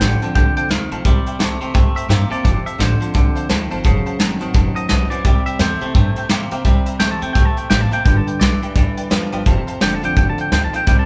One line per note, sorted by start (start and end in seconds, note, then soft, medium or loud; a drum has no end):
0.00 0.15 A1 medium
0.00 0.32 F2 medium
0.00 0.20 F2 medium
0.00 0.20 D3 medium
0.00 0.21 F3 medium
0.00 0.21 A3 medium
0.00 0.21 C4 medium
0.00 0.20 F4 medium
0.00 0.13 C5 medium
0.00 0.13 F5 medium
0.00 0.34 G5 medium
0.00 0.13 A5 medium
0.00 snare loud
0.00 closed hi-hat medium
0.22 0.34 F2 medium
0.22 0.34 D3 medium
0.22 0.35 C4 medium
0.22 0.35 F4 medium
0.22 0.30 C5 medium
0.22 0.30 F5 medium
0.22 0.30 A5 medium
0.22 closed hi-hat medium
0.35 0.50 C2 medium
0.35 0.68 F2 medium
0.35 1.03 C3 medium
0.35 0.68 D3 medium
0.35 0.48 C5 medium
0.35 0.48 F5 medium
0.35 0.56 G5 medium
0.35 0.48 A5 medium
0.35 kick loud
0.35 closed hi-hat medium
0.56 0.65 C5 medium
0.56 0.65 F5 medium
0.56 0.70 G5 medium
0.56 0.65 A5 medium
0.56 muted upright bass stroke medium
0.56 closed hi-hat medium
0.69 0.85 D2 medium
0.69 0.89 F2 medium
0.69 0.90 D#3 medium
0.69 0.90 F3 medium
0.69 0.90 A3 medium
0.69 0.91 C4 medium
0.69 0.90 F4 medium
0.69 0.83 C5 medium
0.69 1.04 F5 loud
0.69 0.83 F5 medium
0.69 0.83 C6 medium
0.69 snare loud
0.69 closed hi-hat medium
0.91 1.00 A#1 medium
0.91 1.04 F2 medium
0.91 1.04 D#3 medium
0.91 1.05 C4 soft
0.91 1.04 F4 medium
0.91 1.00 C5 medium
0.91 1.00 F5 medium
0.91 1.00 A5 loud
0.91 closed hi-hat medium
1.05 1.20 C2 loud
1.05 1.72 C3 medium
1.05 1.37 C3 medium
1.05 1.37 G3 medium
1.05 1.18 C5 medium
1.05 1.18 E5 medium
1.05 1.18 G5 loud
1.05 kick loud
1.05 closed hi-hat medium
1.26 1.35 C5 medium
1.26 1.35 E5 medium
1.26 1.35 G5 medium
1.26 muted upright bass stroke medium
1.26 closed hi-hat medium
1.39 1.54 C2 medium
1.39 1.59 C3 medium
1.39 1.60 E3 medium
1.39 1.61 G3 medium
1.39 1.59 A3 medium
1.39 1.61 C4 medium
1.39 1.60 E4 medium
1.39 1.52 C5 medium
1.39 1.52 E5 medium
1.39 1.52 G5 medium
1.39 snare loud
1.39 closed hi-hat medium
1.61 1.73 C3 medium
1.61 1.73 A3 medium
1.61 1.75 C4 medium
1.61 1.74 E4 medium
1.61 1.69 C5 medium
1.61 1.69 E5 medium
1.61 1.70 G5 medium
1.61 closed hi-hat medium
1.74 1.89 C2 medium
1.74 2.42 G2 medium
1.74 2.07 C3 medium
1.74 2.07 A3 medium
1.74 1.87 C5 medium
1.74 1.87 E5 medium
1.74 1.87 G5 medium
1.74 kick loud
1.74 closed hi-hat medium
1.95 2.04 C5 medium
1.95 2.04 E5 medium
1.95 2.09 E5 medium
1.95 2.04 G5 medium
1.95 muted upright bass stroke medium
1.95 closed hi-hat medium
2.09 2.24 G2 medium
2.09 2.28 C3 medium
2.09 2.30 E3 medium
2.09 2.30 G3 medium
2.09 2.29 A#3 medium
2.09 2.30 C4 medium
2.09 2.30 E4 medium
2.09 2.22 C5 medium
2.09 2.22 E5 medium
2.09 2.31 E5 medium
2.09 2.22 G5 loud
2.09 snare loud
2.09 closed hi-hat medium
2.30 2.43 C3 medium
2.30 2.43 A#3 medium
2.30 2.45 C4 soft
2.30 2.44 E4 medium
2.30 2.39 C5 medium
2.30 2.65 D5 medium
2.30 2.39 E5 medium
2.30 2.39 A5 loud
2.30 muted upright bass stroke medium
2.30 closed hi-hat medium
2.43 2.60 F1 loud
2.43 2.76 F2 medium
2.43 3.12 F2 medium
2.43 2.77 C3 medium
2.43 2.57 C5 medium
2.43 2.57 F5 medium
2.43 2.58 A5 loud
2.43 kick loud
2.43 closed hi-hat medium
2.65 2.74 C5 medium
2.65 2.79 E5 loud
2.65 2.75 F5 medium
2.65 2.74 A5 medium
2.65 muted upright bass stroke medium
2.65 closed hi-hat medium
2.78 2.94 A1 medium
2.78 2.98 F2 medium
2.78 2.99 D3 medium
2.78 2.99 F3 medium
2.78 3.00 A3 medium
2.78 3.00 C4 medium
2.78 2.99 F4 medium
2.78 2.92 C5 medium
2.78 3.48 C5 medium
2.78 2.92 F5 medium
2.78 2.92 A5 medium
2.78 snare loud
2.78 closed hi-hat medium
3.00 3.13 F2 medium
3.00 3.13 D3 medium
3.00 3.15 C4 soft
3.00 3.14 F4 medium
3.00 3.09 C5 medium
3.00 3.09 F5 medium
3.00 3.09 A5 medium
3.00 closed hi-hat medium
3.14 3.30 C2 medium
3.14 3.47 F2 medium
3.14 3.81 C3 medium
3.14 3.47 D3 medium
3.14 3.27 C5 medium
3.14 3.28 F5 medium
3.14 3.28 A5 medium
3.14 kick loud
3.14 closed hi-hat medium
3.35 3.44 C5 medium
3.35 3.44 F5 medium
3.35 3.44 A5 medium
3.35 muted upright bass stroke medium
3.35 closed hi-hat medium
3.49 3.65 D2 medium
3.49 3.69 F2 medium
3.49 3.69 D#3 medium
3.49 3.70 F3 medium
3.49 3.70 A3 medium
3.49 3.71 C4 medium
3.49 3.70 F4 medium
3.49 3.62 C5 loud
3.49 3.62 F5 loud
3.49 3.62 A5 loud
3.49 snare loud
3.49 closed hi-hat medium
3.71 3.81 G1 medium
3.71 3.83 F2 medium
3.71 3.84 D#3 medium
3.71 3.85 C4 soft
3.71 3.84 F4 medium
3.71 3.79 C5 loud
3.71 3.79 F5 loud
3.71 3.79 A5 loud
3.71 closed hi-hat medium
3.84 3.99 F#1 loud
3.84 4.51 F#2 medium
3.84 4.17 F#2 medium
3.84 4.17 C#3 medium
3.84 3.98 C5 loud
3.84 3.98 F#5 medium
3.84 3.98 A5 loud
3.84 kick loud
3.84 closed hi-hat medium
4.06 4.14 C5 medium
4.06 4.14 F#5 medium
4.06 4.14 A5 medium
4.06 muted upright bass stroke medium
4.06 closed hi-hat medium
4.19 4.35 F#1 medium
4.19 4.39 F#2 medium
4.19 4.40 D#3 medium
4.19 4.39 D#3 loud
4.19 4.40 A3 medium
4.19 4.40 C4 medium
4.19 4.38 F#4 medium
4.19 4.32 C5 medium
4.19 4.33 F#5 medium
4.19 4.33 A5 medium
4.19 snare loud
4.19 closed hi-hat loud
4.39 4.51 A1 medium
4.39 4.53 F#2 medium
4.39 4.53 D#3 medium
4.39 4.54 C4 medium
4.39 4.53 F#4 medium
4.39 4.49 C5 medium
4.39 4.49 F#5 medium
4.39 4.49 A5 medium
4.39 closed hi-hat medium
4.54 4.69 F#1 medium
4.54 4.87 F#2 medium
4.54 5.22 A2 medium
4.54 4.87 D#3 medium
4.54 4.68 C5 medium
4.54 4.68 F#5 medium
4.54 4.68 A5 medium
4.54 kick loud
4.54 closed hi-hat medium
4.76 4.84 C5 medium
4.76 4.88 D#5 medium
4.76 4.84 F#5 medium
4.76 4.85 A5 medium
4.76 closed hi-hat medium
4.88 5.05 B1 medium
4.88 5.09 F#2 medium
4.88 5.23 D#3 medium
4.88 5.09 E3 medium
4.88 5.23 A3 medium
4.88 5.24 C4 medium
4.88 5.24 F#4 medium
4.88 5.02 C5 medium
4.88 5.10 D#5 medium
4.88 5.03 F#5 medium
4.88 5.03 A5 loud
4.88 snare loud
4.88 closed hi-hat medium
5.10 5.23 F#2 medium
5.10 5.23 E3 medium
5.10 5.19 C5 medium
5.10 5.45 D5 medium
5.10 5.20 F#5 medium
5.10 5.20 G#5 loud
5.10 closed hi-hat medium
5.25 5.40 C2 medium
5.25 5.57 C3 medium
5.25 5.93 C3 medium
5.25 5.57 G3 medium
5.25 5.38 C5 medium
5.25 5.38 E5 medium
5.25 5.38 G5 loud
5.25 kick loud
5.25 closed hi-hat medium
5.46 5.55 C5 medium
5.46 5.59 E5 loud
5.46 5.55 E5 medium
5.46 5.55 G5 medium
5.46 muted upright bass stroke medium
5.46 closed hi-hat medium
5.59 5.75 E2 medium
5.59 5.79 C3 medium
5.59 5.81 E3 medium
5.59 5.81 G3 medium
5.59 5.79 A3 loud
5.59 5.81 C4 medium
5.59 5.80 E4 medium
5.59 6.28 C5 loud
5.59 5.73 C5 medium
5.59 5.73 E5 medium
5.59 5.73 G5 medium
5.59 snare loud
5.59 closed hi-hat medium
5.81 5.93 C3 medium
5.81 5.94 A3 medium
5.81 5.95 C4 medium
5.81 5.95 E4 medium
5.81 5.90 C5 medium
5.81 5.90 E5 medium
5.81 5.90 G5 medium
5.81 muted upright bass stroke medium
5.81 closed hi-hat medium
5.95 6.10 G2 medium
5.95 6.63 G2 medium
5.95 6.27 C3 medium
5.95 6.28 A3 medium
5.95 6.08 C5 medium
5.95 6.08 E5 medium
5.95 6.08 G5 medium
5.95 kick loud
5.95 closed hi-hat medium
6.16 6.25 C5 medium
6.16 6.25 E5 medium
6.16 6.25 G5 loud
6.16 muted upright bass stroke medium
6.16 closed hi-hat medium
6.29 6.45 A2 medium
6.29 6.49 C3 medium
6.29 6.50 E3 medium
6.29 6.51 G3 medium
6.29 6.49 A#3 medium
6.29 6.51 C4 medium
6.29 6.50 E4 medium
6.29 6.43 C5 loud
6.29 6.43 E5 loud
6.29 6.43 G5 loud
6.29 snare loud
6.29 closed hi-hat medium
6.51 6.64 C3 medium
6.51 6.61 C3 medium
6.51 6.64 A#3 medium
6.51 6.66 C4 medium
6.51 6.65 E4 medium
6.51 6.60 C5 loud
6.51 6.60 E5 loud
6.51 6.60 G5 loud
6.51 closed hi-hat medium
6.65 6.80 C2 loud
6.65 6.97 C3 medium
6.65 7.33 C3 medium
6.65 6.98 G3 medium
6.65 6.78 C5 loud
6.65 6.78 E5 medium
6.65 6.78 A#5 loud
6.65 kick loud
6.65 closed hi-hat medium
6.86 6.94 C5 medium
6.86 6.95 E5 medium
6.86 6.95 A#5 loud
6.86 closed hi-hat medium
7.00 7.15 C2 medium
7.00 7.19 C3 medium
7.00 7.21 E3 medium
7.00 7.22 G3 medium
7.00 7.20 A3 loud
7.00 7.22 C4 medium
7.00 7.21 E4 medium
7.00 7.14 C5 medium
7.00 7.13 E5 medium
7.00 7.11 G5 loud
7.00 7.14 G5 medium
7.00 snare loud
7.00 closed hi-hat medium
7.12 7.23 A5 medium
7.21 7.31 E2 medium
7.21 7.34 C3 medium
7.21 7.34 A3 medium
7.21 7.36 C4 medium
7.21 7.35 E4 medium
7.21 7.30 C5 medium
7.21 7.30 E5 medium
7.21 7.30 G5 medium
7.21 7.32 G5 medium
7.21 closed hi-hat medium
7.33 7.50 C2 medium
7.33 7.69 A#2 medium
7.33 7.68 C3 medium
7.33 7.68 A3 medium
7.33 7.49 C5 medium
7.33 7.49 E5 medium
7.33 7.45 G5 medium
7.33 7.49 G5 medium
7.33 kick loud
7.33 closed hi-hat medium
7.45 7.58 A5 medium
7.57 7.65 C5 medium
7.57 7.65 E5 medium
7.57 7.65 G5 medium
7.57 7.69 G5 medium
7.57 muted upright bass stroke medium
7.57 closed hi-hat medium
7.70 7.86 A1 medium
7.70 8.04 A2 medium
7.70 7.90 C3 medium
7.70 7.90 A#3 medium
7.70 7.83 C5 medium
7.70 7.83 E5 medium
7.70 7.81 G5 medium
7.70 7.83 G5 loud
7.70 snare loud
7.70 closed hi-hat medium
7.81 7.93 A5 medium
7.91 8.04 C3 medium
7.91 8.05 A#3 medium
7.91 8.00 C5 medium
7.91 8.00 E5 medium
7.91 8.04 G5 medium
7.91 8.00 A5 medium
7.91 muted upright bass stroke medium
7.91 closed hi-hat medium
8.05 8.21 G1 medium
8.05 8.73 G2 medium
8.05 8.38 G2 medium
8.05 8.38 D3 medium
8.05 8.18 B4 medium
8.05 8.18 D5 medium
8.05 8.16 G5 loud
8.05 8.18 G5 loud
8.05 kick loud
8.05 closed hi-hat medium
8.16 8.28 A5 medium
8.27 8.35 B4 medium
8.27 8.35 D5 medium
8.27 8.35 G5 medium
8.27 8.40 G5 medium
8.27 muted upright bass stroke medium
8.27 closed hi-hat medium
8.40 8.56 B1 medium
8.40 8.60 G2 medium
8.40 8.74 D3 medium
8.40 8.61 E3 loud
8.40 8.75 G3 medium
8.40 8.75 B3 medium
8.40 8.75 G4 medium
8.40 8.54 B4 medium
8.40 9.43 D5 medium
8.40 8.54 D5 medium
8.40 8.54 G5 medium
8.40 snare loud
8.40 closed hi-hat medium
8.62 8.75 G2 medium
8.62 8.75 E3 medium
8.62 8.71 B4 medium
8.62 8.71 D5 medium
8.62 8.71 G5 medium
8.62 closed hi-hat medium
8.76 8.91 D2 medium
8.76 9.09 G2 medium
8.76 9.09 D3 medium
8.76 9.09 E3 loud
8.76 8.89 B4 medium
8.76 8.89 D5 medium
8.76 8.89 G5 medium
8.76 kick loud
8.76 closed hi-hat medium
8.97 9.06 B4 medium
8.97 9.06 D5 medium
8.97 9.06 G5 medium
8.97 closed hi-hat medium
9.10 9.26 E2 medium
9.10 9.31 G2 medium
9.10 9.44 D3 soft
9.10 9.31 F3 medium
9.10 9.45 G3 medium
9.10 9.45 B3 medium
9.10 9.46 G4 medium
9.10 9.24 B4 loud
9.10 9.24 D5 medium
9.10 9.24 G5 loud
9.10 snare loud
9.10 closed hi-hat medium
9.32 9.42 G1 medium
9.32 9.45 G2 medium
9.32 9.45 F3 medium
9.32 9.41 B4 loud
9.32 9.41 D5 medium
9.32 9.41 G5 loud
9.32 closed hi-hat medium
9.46 9.61 F1 loud
9.46 10.14 F2 medium
9.46 9.79 F2 medium
9.46 9.79 C3 medium
9.46 9.59 C5 loud
9.46 9.59 F5 medium
9.46 9.60 A5 loud
9.46 kick loud
9.46 closed hi-hat medium
9.67 9.76 C5 medium
9.67 9.76 F5 medium
9.67 9.76 A5 medium
9.67 muted upright bass stroke medium
9.67 closed hi-hat medium
9.80 9.96 F1 loud
9.80 10.01 F2 medium
9.80 10.01 D3 medium
9.80 10.02 F3 medium
9.80 10.02 A3 medium
9.80 10.03 C4 medium
9.80 10.00 F4 medium
9.80 9.94 C5 medium
9.80 9.94 F5 medium
9.80 9.94 G5 medium
9.80 9.95 A5 medium
9.80 snare loud
9.80 closed hi-hat medium
9.94 10.05 A5 medium
10.02 10.12 A1 medium
10.02 10.15 F2 medium
10.02 10.16 D3 medium
10.02 10.17 C4 medium
10.02 10.16 F4 medium
10.02 10.11 C5 medium
10.02 10.11 F5 medium
10.02 10.16 G5 medium
10.02 10.12 A5 medium
10.02 closed hi-hat medium
10.16 10.32 F1 medium
10.16 10.49 F2 medium
10.16 10.50 A2 medium
10.16 10.50 D3 medium
10.16 10.30 C5 medium
10.16 10.30 F5 medium
10.16 10.29 G5 medium
10.16 10.30 A5 medium
10.16 kick loud
10.16 closed hi-hat medium
10.30 10.41 A5 medium
10.38 10.47 C5 medium
10.38 10.47 F5 medium
10.38 10.51 G5 medium
10.38 10.47 A5 medium
10.38 closed hi-hat medium
10.52 10.67 D2 medium
10.52 10.72 F2 medium
10.52 10.72 D#3 medium
10.52 10.65 C5 medium
10.52 10.65 F5 medium
10.52 10.64 G5 medium
10.52 10.65 A5 loud
10.52 snare loud
10.52 closed hi-hat medium
10.64 10.75 A5 medium
10.73 10.86 F2 medium
10.73 10.86 D#3 medium
10.73 10.82 C5 medium
10.73 10.82 F5 medium
10.73 10.87 G5 medium
10.73 10.82 A5 loud
10.73 muted upright bass stroke medium
10.73 closed hi-hat medium
10.87 11.02 C2 medium
10.87 11.06 C3 medium
10.87 11.06 G3 medium
10.87 11.00 C5 medium
10.87 11.01 E5 medium
10.87 11.01 G5 loud
10.87 10.99 G5 loud
10.87 kick loud
10.87 closed hi-hat medium
10.99 11.06 A5 medium